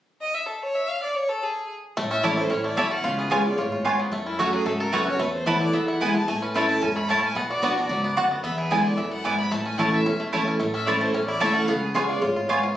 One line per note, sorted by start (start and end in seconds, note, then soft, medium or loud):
0.21 0.35 D#5 medium
0.34 0.47 E5 medium
0.48 0.64 A4 soft
0.62 0.76 C#5 medium
0.75 0.91 E5 medium
0.89 1.02 F5 medium
1.03 1.17 D5 medium
1.15 1.31 C#5 medium
1.29 1.45 A4 medium
1.43 1.70 G#4 medium
1.97 2.38 A1 medium
1.97 2.48 A2 medium
1.97 2.22 A3 medium
2.11 2.50 C#4 medium
2.11 2.25 E5 medium
2.23 2.37 E3 medium
2.23 2.62 A3 medium
2.23 2.33 A3 medium
2.23 2.37 A3 medium
2.23 2.37 C#4 medium
2.23 2.33 E4 medium
2.23 2.36 E4 medium
2.23 2.33 C#5 medium
2.23 2.37 D5 medium
2.23 2.33 A5 medium
2.37 2.50 C#4 medium
2.37 2.50 E4 medium
2.37 2.75 E4 medium
2.37 2.52 C5 medium
2.50 2.73 A1 medium
2.50 2.76 A2 medium
2.50 2.91 C#4 medium
2.50 2.64 C#5 medium
2.64 3.02 A3 medium
2.64 2.78 D5 medium
2.77 3.00 B1 medium
2.77 3.03 B2 medium
2.77 2.87 A3 medium
2.77 2.87 E4 medium
2.77 3.04 E4 medium
2.77 2.87 C#5 medium
2.77 2.93 E5 medium
2.77 2.87 A5 medium
2.91 3.22 C#4 medium
2.91 3.06 F#5 loud
3.04 3.45 C#2 medium
3.04 3.55 C#3 medium
3.04 3.42 F4 medium
3.04 3.18 F5 medium
3.18 3.56 B3 medium
3.18 3.32 G#4 medium
3.30 3.44 G#3 medium
3.30 3.45 B3 medium
3.30 3.41 B3 medium
3.30 3.70 C#4 medium
3.30 3.45 F4 medium
3.30 3.41 F4 medium
3.30 3.43 G#4 medium
3.30 3.45 B4 medium
3.30 3.41 C#5 loud
3.30 3.41 G#5 loud
3.44 3.57 F4 medium
3.44 3.58 F4 medium
3.44 3.57 G#4 medium
3.44 3.59 D5 loud
3.58 3.99 G#1 medium
3.58 3.84 A2 medium
3.58 3.71 F4 medium
3.58 3.99 C#5 medium
3.72 3.84 F4 medium
3.85 4.11 G#2 medium
3.85 3.94 B3 medium
3.85 3.95 F4 loud
3.85 4.12 F4 medium
3.85 3.95 C#5 medium
3.85 3.95 G#5 medium
4.00 4.12 B3 medium
4.11 4.52 F#2 medium
4.11 4.63 F#2 medium
4.11 4.38 A3 medium
4.26 4.64 C#4 medium
4.26 4.41 E4 medium
4.39 4.65 F#3 medium
4.39 4.49 A3 medium
4.39 4.65 A3 medium
4.39 4.65 C#4 medium
4.39 4.52 F#4 medium
4.39 4.49 F#4 medium
4.39 4.66 F#4 loud
4.39 4.49 C#5 medium
4.39 4.49 F#5 loud
4.52 4.91 F#3 medium
4.52 4.67 G#4 medium
4.66 4.89 G#2 medium
4.66 5.17 C#3 medium
4.66 5.04 A3 medium
4.66 4.79 A4 medium
4.80 5.18 A4 medium
4.80 4.95 A#4 medium
4.92 5.16 F#2 medium
4.92 5.06 F#3 medium
4.92 5.06 A3 medium
4.92 5.02 A3 loud
4.92 5.06 C#4 medium
4.92 5.20 F#4 medium
4.92 5.03 F#4 medium
4.92 5.05 F#4 medium
4.92 5.07 B4 medium
4.92 5.03 C#5 loud
4.92 5.03 F#5 loud
5.06 5.20 C#4 medium
5.06 5.19 F#4 medium
5.06 5.22 C#5 loud
5.19 5.71 E2 medium
5.19 5.61 E2 medium
5.19 5.45 A3 medium
5.19 5.33 B4 medium
5.34 5.49 C5 medium
5.46 5.72 E3 medium
5.46 5.72 A3 medium
5.46 5.73 A3 medium
5.46 5.56 B3 medium
5.46 5.73 B3 medium
5.46 5.56 E4 medium
5.46 5.73 E4 medium
5.46 5.57 B4 loud
5.46 5.60 C#5 medium
5.46 5.57 A5 medium
5.61 5.74 E4 medium
5.61 5.75 D5 loud
5.73 6.25 E2 medium
5.73 6.14 E2 medium
5.73 6.00 B3 medium
5.73 5.87 E5 medium
5.88 6.26 E4 medium
5.88 6.03 F#5 medium
6.01 6.14 E3 medium
6.01 6.15 G#3 medium
6.01 6.10 B3 medium
6.01 6.28 B3 medium
6.01 6.15 B3 medium
6.01 6.11 E4 medium
6.01 6.13 E4 medium
6.01 6.11 B4 medium
6.01 6.11 G#5 loud
6.01 6.16 G#5 medium
6.15 6.28 E3 medium
6.15 6.28 B3 medium
6.15 6.27 E4 medium
6.15 6.30 A5 loud
6.28 6.69 A1 medium
6.28 6.79 A2 loud
6.28 6.54 A3 medium
6.28 6.44 G#5 medium
6.42 6.80 C#4 medium
6.42 6.56 B4 medium
6.54 6.80 E3 medium
6.54 6.81 A3 medium
6.54 6.65 A3 medium
6.54 6.93 A3 medium
6.54 6.81 C#4 medium
6.54 6.65 E4 medium
6.54 6.81 E4 medium
6.54 6.65 C#5 medium
6.54 6.68 E5 medium
6.54 6.65 A5 medium
6.68 7.06 E4 medium
6.68 6.83 A5 loud
6.81 7.23 E1 medium
6.81 7.07 G#2 medium
6.81 7.21 C#4 medium
6.81 6.97 G#5 medium
6.95 7.34 A3 medium
6.95 7.10 B5 loud
7.08 7.35 A2 medium
7.08 7.19 A3 medium
7.08 7.36 E4 medium
7.08 7.19 E4 loud
7.08 7.19 C#5 medium
7.08 7.22 A5 medium
7.08 7.19 A5 loud
7.23 7.36 C#4 medium
7.23 7.38 G#5 medium
7.35 7.56 B1 medium
7.35 7.87 B2 loud
7.35 7.62 B3 medium
7.35 7.50 F#5 medium
7.50 7.88 F#4 medium
7.50 7.64 D5 medium
7.62 7.86 B1 medium
7.62 7.76 F#3 medium
7.62 7.76 B3 medium
7.62 7.72 B3 medium
7.62 8.01 B3 medium
7.62 7.76 D4 loud
7.62 7.72 F#4 medium
7.62 7.76 F#4 medium
7.62 7.77 B4 medium
7.62 7.73 D5 medium
7.62 7.73 F#5 loud
7.77 8.15 D4 medium
7.77 7.90 D4 soft
7.77 7.90 F#4 medium
7.77 8.14 D5 loud
7.89 8.12 C#2 medium
7.89 8.15 G#2 medium
7.89 8.28 F#3 medium
8.04 8.30 B3 medium
8.16 8.39 D2 medium
8.16 8.42 F#2 medium
8.16 8.26 B3 medium
8.16 8.26 F#4 loud
8.16 8.44 F#4 medium
8.16 8.27 D5 medium
8.16 8.27 F#5 loud
8.31 8.43 B3 medium
8.43 8.84 E2 medium
8.43 8.96 E2 loud
8.43 8.70 B3 medium
8.43 8.57 E5 medium
8.58 9.24 E4 medium
8.58 8.73 G#4 medium
8.71 8.96 D3 medium
8.71 8.97 G#3 medium
8.71 9.09 B3 medium
8.71 8.80 B3 medium
8.71 8.97 B3 loud
8.71 8.81 E4 medium
8.71 8.97 E4 medium
8.71 8.84 B4 medium
8.71 8.81 D5 medium
8.71 8.81 G#5 loud
8.84 9.22 D4 medium
8.84 8.99 D5 medium
8.97 9.39 B1 medium
8.97 9.24 F#2 medium
8.97 10.38 E3 medium
8.97 9.11 E5 medium
9.11 9.37 B3 medium
9.11 9.26 F#5 loud
9.24 9.51 G#2 medium
9.24 9.34 B3 medium
9.24 9.92 E4 medium
9.24 9.34 E4 medium
9.24 9.35 D5 loud
9.24 9.38 G#5 medium
9.24 9.35 G#5 loud
9.38 9.51 B3 medium
9.38 9.53 B5 loud
9.51 9.92 A1 medium
9.51 10.03 A2 loud
9.51 9.78 A3 medium
9.51 9.65 A5 medium
9.65 10.03 C#4 medium
9.65 9.79 G#5 loud
9.78 10.04 E3 medium
9.78 9.88 A3 medium
9.78 10.17 A3 medium
9.78 10.05 A3 medium
9.78 10.05 C#4 medium
9.78 9.88 E4 medium
9.78 10.05 E4 medium
9.78 9.88 C#5 loud
9.78 9.92 F#5 medium
9.78 9.89 A5 medium
9.93 10.30 E4 medium
9.93 10.18 E5 medium
10.06 10.46 E1 medium
10.06 10.57 E2 medium
10.06 10.44 C#4 medium
10.20 10.57 A3 medium
10.33 10.59 E3 medium
10.33 10.42 A3 medium
10.33 10.59 A3 medium
10.33 10.59 C#4 medium
10.33 10.42 E4 medium
10.33 10.60 E4 medium
10.33 10.42 C#5 loud
10.33 10.42 A5 medium
10.48 10.60 C#4 medium
10.60 11.01 A1 medium
10.60 11.12 A2 medium
10.60 10.98 A3 medium
10.74 11.14 C#4 medium
10.74 10.88 E5 medium
10.86 11.13 E3 medium
10.86 10.96 A3 medium
10.86 11.13 A3 medium
10.86 11.13 C#4 medium
10.86 10.96 E4 medium
10.86 11.25 E4 medium
10.86 11.13 E4 medium
10.86 10.97 C#5 medium
10.86 10.99 D5 medium
10.86 10.97 A5 medium
10.99 11.38 A3 medium
10.99 11.14 C5 medium
11.13 11.37 A1 medium
11.13 11.66 E2 medium
11.13 11.54 C#4 medium
11.13 11.25 C#5 medium
11.26 11.66 E4 medium
11.26 11.42 D5 medium
11.40 11.64 B1 medium
11.40 11.66 E3 medium
11.40 11.50 A3 medium
11.40 11.67 A3 medium
11.40 11.67 C#4 medium
11.40 11.50 E4 medium
11.40 11.67 E4 medium
11.40 11.68 A4 medium
11.40 11.50 C#5 loud
11.40 11.55 E5 medium
11.40 11.50 A5 medium
11.53 11.72 C#4 medium
11.53 11.69 F#5 loud
11.67 12.08 C#2 medium
11.67 12.19 C#3 medium
11.67 12.06 B3 medium
11.67 11.82 F5 medium
11.82 11.97 G#4 medium
11.94 12.20 G#3 medium
11.94 12.04 B3 medium
11.94 12.21 B3 medium
11.94 12.08 F4 medium
11.94 12.04 F4 medium
11.94 12.21 F4 loud
11.94 12.21 G#4 loud
11.94 12.07 B4 medium
11.94 12.05 C#5 medium
11.94 12.05 G#5 loud
12.07 12.21 F4 medium
12.07 12.22 D5 loud
12.21 12.62 G#1 medium
12.21 12.47 A2 medium
12.21 12.35 F4 medium
12.21 12.62 C#5 medium
12.36 12.48 F4 medium
12.49 12.75 G#2 medium
12.49 12.58 B3 medium
12.49 12.62 F4 medium
12.49 12.58 F4 medium
12.49 12.59 C#5 loud
12.49 12.59 G#5 loud
12.63 12.76 F4 medium